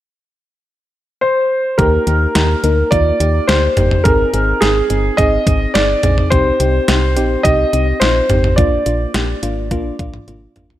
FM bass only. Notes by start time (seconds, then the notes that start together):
1.79 D#2
2.07 D#2
2.35 D#2
2.64 D2
2.92 D#2
3.20 D#2
3.49 D2
3.77 G1
4.05 G#1
4.34 G#1
4.62 G#1
4.90 G1
5.18 G#1
5.47 G#1
5.75 G1
6.03 A#1
6.32 C2
6.60 C2
6.88 C2
7.17 A#1
7.45 C2
7.73 C2
8.01 A#1
8.30 G#1
8.58 A#1
8.86 A#1
9.15 A#1
9.43 G#1
9.71 A#1
9.99 A#1
10.28 G#1
10.56 G#1